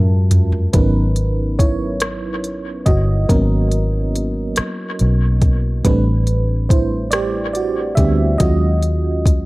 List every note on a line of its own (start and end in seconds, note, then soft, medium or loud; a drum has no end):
0.00 0.71 F#2 loud
0.00 0.69 G#3 medium
0.00 0.70 C#4 medium
0.00 0.71 F4 medium
0.00 0.71 F#4 medium
0.00 0.73 A#4 medium
0.31 closed hi-hat medium
0.31 floor tom loud
0.52 floor tom loud
0.73 2.83 G#1 medium
0.73 1.31 F#3 soft
0.73 1.31 B3 soft
0.73 1.31 C#4 medium
0.73 1.56 D#4 medium
0.73 1.31 A#4 soft
0.73 1.55 B4 medium
0.73 kick loud
0.73 closed hi-hat medium
1.16 closed hi-hat soft
1.59 2.84 E4 medium
1.59 2.83 C#5 medium
1.59 kick medium
1.59 closed hi-hat soft
2.00 cross-stick loud
2.00 closed hi-hat medium
2.44 closed hi-hat soft
2.86 3.25 G1 medium
2.86 3.27 F#4 medium
2.86 3.26 D#5 medium
2.86 kick medium
2.86 closed hi-hat soft
3.29 4.53 G#1 medium
3.29 4.53 F#3 soft
3.29 4.53 A#3 soft
3.29 4.53 B3 soft
3.29 4.54 C#4 medium
3.29 4.53 A#4 medium
3.29 kick loud
3.29 closed hi-hat medium
3.71 closed hi-hat soft
4.16 closed hi-hat soft
4.56 muted fingered electric bass stroke soft
4.56 cross-stick loud
4.56 closed hi-hat medium
4.99 5.82 B1 medium
4.99 closed hi-hat soft
5.42 kick medium
5.42 closed hi-hat soft
5.85 7.94 A1 loud
5.85 7.96 G3 medium
5.85 8.37 A3 medium
5.85 7.97 C4 soft
5.85 7.97 D4 medium
5.85 6.72 B4 medium
5.85 kick loud
5.85 closed hi-hat medium
6.27 closed hi-hat soft
6.69 7.11 E4 medium
6.69 7.13 C5 medium
6.69 kick loud
6.69 closed hi-hat medium
7.11 7.53 G4 medium
7.11 7.51 D5 medium
7.11 cross-stick loud
7.11 closed hi-hat medium
7.53 7.95 F#4 medium
7.53 7.98 D5 medium
7.53 closed hi-hat soft
7.95 8.36 D2 loud
7.95 8.36 G3 soft
7.95 8.36 B3 soft
7.95 8.36 C4 soft
7.95 8.36 D4 soft
7.95 8.38 G4 medium
7.95 8.40 E5 medium
7.95 kick medium
7.95 closed hi-hat soft
8.38 9.46 D#2 medium
8.38 9.46 F#3 medium
8.38 9.46 G#3 medium
8.38 9.46 C#4 soft
8.38 9.46 F4 medium
8.38 9.46 F#4 medium
8.38 9.46 D#5 loud
8.38 kick loud
8.38 closed hi-hat medium
8.82 closed hi-hat soft
9.26 kick medium
9.26 closed hi-hat medium